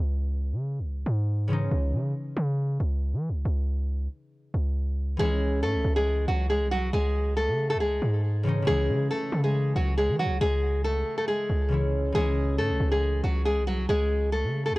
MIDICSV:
0, 0, Header, 1, 4, 480
1, 0, Start_track
1, 0, Key_signature, 4, "minor"
1, 0, Tempo, 434783
1, 1892, Time_signature, 4, 2, 24, 8
1, 16325, End_track
2, 0, Start_track
2, 0, Title_t, "Nylon-string guitar"
2, 0, Program_c, 0, 24
2, 5733, Note_on_c, 0, 68, 108
2, 5742, Note_on_c, 0, 56, 88
2, 6184, Note_off_c, 0, 68, 0
2, 6189, Note_off_c, 0, 56, 0
2, 6212, Note_on_c, 0, 69, 83
2, 6221, Note_on_c, 0, 57, 69
2, 6557, Note_off_c, 0, 69, 0
2, 6562, Note_off_c, 0, 57, 0
2, 6580, Note_on_c, 0, 68, 80
2, 6588, Note_on_c, 0, 56, 64
2, 6911, Note_off_c, 0, 68, 0
2, 6916, Note_off_c, 0, 56, 0
2, 6933, Note_on_c, 0, 66, 78
2, 6941, Note_on_c, 0, 54, 61
2, 7124, Note_off_c, 0, 66, 0
2, 7129, Note_off_c, 0, 54, 0
2, 7172, Note_on_c, 0, 68, 80
2, 7181, Note_on_c, 0, 56, 72
2, 7364, Note_off_c, 0, 68, 0
2, 7369, Note_off_c, 0, 56, 0
2, 7411, Note_on_c, 0, 66, 89
2, 7420, Note_on_c, 0, 54, 69
2, 7603, Note_off_c, 0, 66, 0
2, 7608, Note_off_c, 0, 54, 0
2, 7653, Note_on_c, 0, 68, 108
2, 7662, Note_on_c, 0, 56, 95
2, 8104, Note_off_c, 0, 68, 0
2, 8108, Note_off_c, 0, 56, 0
2, 8132, Note_on_c, 0, 69, 83
2, 8141, Note_on_c, 0, 57, 62
2, 8478, Note_off_c, 0, 69, 0
2, 8482, Note_off_c, 0, 57, 0
2, 8500, Note_on_c, 0, 69, 85
2, 8508, Note_on_c, 0, 57, 59
2, 8590, Note_off_c, 0, 69, 0
2, 8595, Note_off_c, 0, 57, 0
2, 8613, Note_on_c, 0, 68, 73
2, 8622, Note_on_c, 0, 56, 64
2, 9529, Note_off_c, 0, 68, 0
2, 9533, Note_off_c, 0, 56, 0
2, 9572, Note_on_c, 0, 68, 112
2, 9580, Note_on_c, 0, 56, 81
2, 10023, Note_off_c, 0, 68, 0
2, 10028, Note_off_c, 0, 56, 0
2, 10053, Note_on_c, 0, 69, 92
2, 10062, Note_on_c, 0, 57, 66
2, 10398, Note_off_c, 0, 69, 0
2, 10403, Note_off_c, 0, 57, 0
2, 10419, Note_on_c, 0, 68, 77
2, 10428, Note_on_c, 0, 56, 62
2, 10751, Note_off_c, 0, 68, 0
2, 10756, Note_off_c, 0, 56, 0
2, 10773, Note_on_c, 0, 66, 82
2, 10782, Note_on_c, 0, 54, 61
2, 10964, Note_off_c, 0, 66, 0
2, 10970, Note_off_c, 0, 54, 0
2, 11013, Note_on_c, 0, 68, 85
2, 11022, Note_on_c, 0, 56, 64
2, 11204, Note_off_c, 0, 68, 0
2, 11209, Note_off_c, 0, 56, 0
2, 11253, Note_on_c, 0, 66, 88
2, 11261, Note_on_c, 0, 54, 75
2, 11444, Note_off_c, 0, 66, 0
2, 11449, Note_off_c, 0, 54, 0
2, 11493, Note_on_c, 0, 68, 117
2, 11501, Note_on_c, 0, 56, 89
2, 11944, Note_off_c, 0, 68, 0
2, 11948, Note_off_c, 0, 56, 0
2, 11971, Note_on_c, 0, 69, 84
2, 11980, Note_on_c, 0, 57, 64
2, 12317, Note_off_c, 0, 69, 0
2, 12322, Note_off_c, 0, 57, 0
2, 12339, Note_on_c, 0, 69, 76
2, 12348, Note_on_c, 0, 57, 60
2, 12429, Note_off_c, 0, 69, 0
2, 12435, Note_off_c, 0, 57, 0
2, 12451, Note_on_c, 0, 68, 77
2, 12460, Note_on_c, 0, 56, 64
2, 13367, Note_off_c, 0, 68, 0
2, 13372, Note_off_c, 0, 56, 0
2, 13412, Note_on_c, 0, 68, 108
2, 13421, Note_on_c, 0, 56, 86
2, 13863, Note_off_c, 0, 68, 0
2, 13868, Note_off_c, 0, 56, 0
2, 13892, Note_on_c, 0, 69, 82
2, 13900, Note_on_c, 0, 57, 69
2, 14237, Note_off_c, 0, 69, 0
2, 14242, Note_off_c, 0, 57, 0
2, 14258, Note_on_c, 0, 68, 76
2, 14268, Note_on_c, 0, 56, 65
2, 14591, Note_off_c, 0, 68, 0
2, 14596, Note_off_c, 0, 56, 0
2, 14613, Note_on_c, 0, 66, 76
2, 14621, Note_on_c, 0, 54, 63
2, 14804, Note_off_c, 0, 66, 0
2, 14809, Note_off_c, 0, 54, 0
2, 14853, Note_on_c, 0, 68, 85
2, 14861, Note_on_c, 0, 56, 69
2, 15044, Note_off_c, 0, 68, 0
2, 15049, Note_off_c, 0, 56, 0
2, 15091, Note_on_c, 0, 66, 87
2, 15100, Note_on_c, 0, 54, 69
2, 15283, Note_off_c, 0, 66, 0
2, 15288, Note_off_c, 0, 54, 0
2, 15333, Note_on_c, 0, 68, 107
2, 15342, Note_on_c, 0, 56, 95
2, 15784, Note_off_c, 0, 68, 0
2, 15788, Note_off_c, 0, 56, 0
2, 15812, Note_on_c, 0, 69, 85
2, 15821, Note_on_c, 0, 57, 61
2, 16157, Note_off_c, 0, 69, 0
2, 16162, Note_off_c, 0, 57, 0
2, 16181, Note_on_c, 0, 69, 86
2, 16189, Note_on_c, 0, 57, 59
2, 16270, Note_off_c, 0, 69, 0
2, 16276, Note_off_c, 0, 57, 0
2, 16325, End_track
3, 0, Start_track
3, 0, Title_t, "Harp"
3, 0, Program_c, 1, 46
3, 0, Note_on_c, 1, 52, 60
3, 0, Note_on_c, 1, 56, 65
3, 0, Note_on_c, 1, 61, 67
3, 0, Note_on_c, 1, 64, 69
3, 1624, Note_off_c, 1, 61, 0
3, 1629, Note_on_c, 1, 49, 64
3, 1630, Note_off_c, 1, 52, 0
3, 1638, Note_off_c, 1, 64, 0
3, 1643, Note_on_c, 1, 52, 58
3, 1644, Note_off_c, 1, 56, 0
3, 1657, Note_on_c, 1, 56, 58
3, 1672, Note_on_c, 1, 61, 59
3, 1686, Note_on_c, 1, 63, 70
3, 1902, Note_off_c, 1, 61, 0
3, 1909, Note_off_c, 1, 63, 0
3, 1948, Note_off_c, 1, 49, 0
3, 1948, Note_off_c, 1, 52, 0
3, 1948, Note_off_c, 1, 56, 0
3, 5706, Note_on_c, 1, 52, 63
3, 5763, Note_on_c, 1, 61, 68
3, 5792, Note_on_c, 1, 64, 75
3, 9303, Note_off_c, 1, 61, 0
3, 9310, Note_on_c, 1, 49, 64
3, 9311, Note_off_c, 1, 52, 0
3, 9318, Note_off_c, 1, 64, 0
3, 9324, Note_on_c, 1, 52, 60
3, 9338, Note_on_c, 1, 56, 60
3, 9352, Note_on_c, 1, 61, 62
3, 9367, Note_on_c, 1, 63, 73
3, 9506, Note_off_c, 1, 49, 0
3, 9519, Note_on_c, 1, 49, 70
3, 9534, Note_off_c, 1, 52, 0
3, 9547, Note_on_c, 1, 52, 69
3, 9582, Note_off_c, 1, 61, 0
3, 9590, Note_off_c, 1, 63, 0
3, 9604, Note_on_c, 1, 61, 64
3, 9628, Note_off_c, 1, 56, 0
3, 9633, Note_on_c, 1, 64, 80
3, 12887, Note_off_c, 1, 49, 0
3, 12900, Note_on_c, 1, 49, 55
3, 12901, Note_off_c, 1, 52, 0
3, 12904, Note_off_c, 1, 61, 0
3, 12914, Note_on_c, 1, 52, 51
3, 12918, Note_off_c, 1, 64, 0
3, 12928, Note_on_c, 1, 56, 48
3, 12943, Note_on_c, 1, 61, 54
3, 12957, Note_on_c, 1, 64, 60
3, 13372, Note_off_c, 1, 52, 0
3, 13385, Note_on_c, 1, 52, 61
3, 13418, Note_off_c, 1, 61, 0
3, 13425, Note_off_c, 1, 64, 0
3, 13442, Note_on_c, 1, 61, 68
3, 13468, Note_off_c, 1, 49, 0
3, 13468, Note_off_c, 1, 56, 0
3, 13470, Note_on_c, 1, 64, 72
3, 16325, Note_off_c, 1, 52, 0
3, 16325, Note_off_c, 1, 61, 0
3, 16325, Note_off_c, 1, 64, 0
3, 16325, End_track
4, 0, Start_track
4, 0, Title_t, "808-style bass"
4, 0, Program_c, 2, 38
4, 0, Note_on_c, 2, 37, 107
4, 580, Note_on_c, 2, 49, 103
4, 596, Note_off_c, 2, 37, 0
4, 876, Note_on_c, 2, 37, 100
4, 892, Note_off_c, 2, 49, 0
4, 1158, Note_off_c, 2, 37, 0
4, 1172, Note_on_c, 2, 44, 105
4, 1864, Note_off_c, 2, 44, 0
4, 1892, Note_on_c, 2, 37, 109
4, 2133, Note_on_c, 2, 49, 98
4, 2149, Note_off_c, 2, 37, 0
4, 2361, Note_off_c, 2, 49, 0
4, 2612, Note_on_c, 2, 49, 109
4, 3073, Note_off_c, 2, 49, 0
4, 3092, Note_on_c, 2, 37, 103
4, 3460, Note_on_c, 2, 52, 100
4, 3476, Note_off_c, 2, 37, 0
4, 3636, Note_on_c, 2, 37, 105
4, 3652, Note_off_c, 2, 52, 0
4, 3804, Note_off_c, 2, 37, 0
4, 3812, Note_on_c, 2, 37, 112
4, 4504, Note_off_c, 2, 37, 0
4, 5012, Note_on_c, 2, 37, 105
4, 5704, Note_off_c, 2, 37, 0
4, 5732, Note_on_c, 2, 37, 108
4, 6212, Note_on_c, 2, 44, 93
4, 6229, Note_off_c, 2, 37, 0
4, 6340, Note_on_c, 2, 37, 105
4, 6356, Note_off_c, 2, 44, 0
4, 6447, Note_off_c, 2, 37, 0
4, 6453, Note_on_c, 2, 37, 111
4, 6913, Note_off_c, 2, 37, 0
4, 6932, Note_on_c, 2, 37, 106
4, 7300, Note_on_c, 2, 36, 101
4, 7316, Note_off_c, 2, 37, 0
4, 7635, Note_off_c, 2, 36, 0
4, 7652, Note_on_c, 2, 37, 106
4, 8260, Note_on_c, 2, 49, 104
4, 8276, Note_off_c, 2, 37, 0
4, 8556, Note_on_c, 2, 37, 104
4, 8573, Note_off_c, 2, 49, 0
4, 8838, Note_off_c, 2, 37, 0
4, 8853, Note_on_c, 2, 44, 105
4, 9544, Note_off_c, 2, 44, 0
4, 9573, Note_on_c, 2, 37, 111
4, 9813, Note_on_c, 2, 49, 99
4, 9829, Note_off_c, 2, 37, 0
4, 10041, Note_off_c, 2, 49, 0
4, 10292, Note_on_c, 2, 49, 110
4, 10753, Note_off_c, 2, 49, 0
4, 10772, Note_on_c, 2, 37, 109
4, 11139, Note_on_c, 2, 52, 103
4, 11155, Note_off_c, 2, 37, 0
4, 11316, Note_on_c, 2, 37, 104
4, 11332, Note_off_c, 2, 52, 0
4, 11484, Note_off_c, 2, 37, 0
4, 11492, Note_on_c, 2, 37, 114
4, 12184, Note_off_c, 2, 37, 0
4, 12692, Note_on_c, 2, 37, 104
4, 13383, Note_off_c, 2, 37, 0
4, 13412, Note_on_c, 2, 37, 106
4, 13892, Note_on_c, 2, 44, 99
4, 13908, Note_off_c, 2, 37, 0
4, 14019, Note_on_c, 2, 37, 107
4, 14035, Note_off_c, 2, 44, 0
4, 14126, Note_off_c, 2, 37, 0
4, 14132, Note_on_c, 2, 37, 111
4, 14593, Note_off_c, 2, 37, 0
4, 14612, Note_on_c, 2, 37, 106
4, 14979, Note_on_c, 2, 36, 101
4, 14995, Note_off_c, 2, 37, 0
4, 15314, Note_off_c, 2, 36, 0
4, 15332, Note_on_c, 2, 37, 107
4, 15939, Note_on_c, 2, 49, 105
4, 15955, Note_off_c, 2, 37, 0
4, 16236, Note_on_c, 2, 37, 101
4, 16252, Note_off_c, 2, 49, 0
4, 16325, Note_off_c, 2, 37, 0
4, 16325, End_track
0, 0, End_of_file